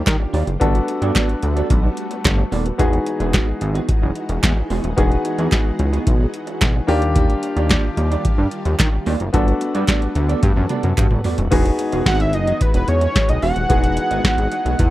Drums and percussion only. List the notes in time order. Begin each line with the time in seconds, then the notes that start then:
0.07 kick, snare, clap, closed hi-hat
0.34 open hi-hat
0.47 closed hi-hat
0.61 kick, closed hi-hat
0.75 closed hi-hat
0.88 closed hi-hat
1.02 closed hi-hat
1.15 kick, snare, clap, closed hi-hat
1.29 closed hi-hat
1.43 closed hi-hat
1.57 closed hi-hat
1.70 kick, closed hi-hat
1.97 closed hi-hat
2.11 closed hi-hat
2.25 kick, snare, clap, closed hi-hat
2.52 open hi-hat
2.66 closed hi-hat
2.79 kick, closed hi-hat
2.93 closed hi-hat
3.06 closed hi-hat
3.20 closed hi-hat
3.34 kick, snare, clap, closed hi-hat
3.61 closed hi-hat
3.75 closed hi-hat
3.89 kick, closed hi-hat
4.15 closed hi-hat
4.29 closed hi-hat
4.43 kick, snare, clap, closed hi-hat
4.70 open hi-hat
4.84 closed hi-hat
4.98 kick, closed hi-hat
5.12 closed hi-hat
5.25 closed hi-hat
5.39 closed hi-hat
5.52 kick, snare, clap, closed hi-hat
5.79 closed hi-hat
5.93 closed hi-hat
6.07 kick, closed hi-hat
6.34 closed hi-hat
6.47 closed hi-hat
6.61 kick, snare, clap, closed hi-hat
6.88 open hi-hat
7.02 closed hi-hat
7.16 kick, closed hi-hat
7.30 closed hi-hat
7.43 closed hi-hat
7.57 closed hi-hat
7.70 kick, snare, clap, closed hi-hat
7.97 closed hi-hat
8.12 closed hi-hat
8.25 kick, closed hi-hat
8.51 closed hi-hat
8.65 closed hi-hat
8.79 kick, snare, clap, closed hi-hat
9.06 open hi-hat
9.20 closed hi-hat
9.34 kick, closed hi-hat
9.48 closed hi-hat
9.61 closed hi-hat
9.75 closed hi-hat
9.88 kick, snare, clap, closed hi-hat
10.02 closed hi-hat
10.15 closed hi-hat
10.29 closed hi-hat
10.43 kick, closed hi-hat, high tom
10.56 high tom
10.69 closed hi-hat, mid tom
10.83 closed hi-hat, mid tom
10.97 kick, clap, closed hi-hat, mid tom
11.11 mid tom
11.24 floor tom, open hi-hat
11.38 closed hi-hat, floor tom
11.52 kick, closed hi-hat, crash
11.66 closed hi-hat
11.79 closed hi-hat
11.92 closed hi-hat
12.06 kick, snare, closed hi-hat
12.20 closed hi-hat
12.33 closed hi-hat
12.47 closed hi-hat
12.61 kick, closed hi-hat
12.74 closed hi-hat
12.88 closed hi-hat
13.01 closed hi-hat
13.16 kick, snare, closed hi-hat
13.29 closed hi-hat
13.42 open hi-hat
13.56 closed hi-hat
13.70 kick, closed hi-hat
13.84 closed hi-hat
13.97 closed hi-hat
14.11 closed hi-hat
14.24 kick, snare, closed hi-hat
14.38 closed hi-hat
14.52 closed hi-hat
14.66 closed hi-hat
14.79 kick, closed hi-hat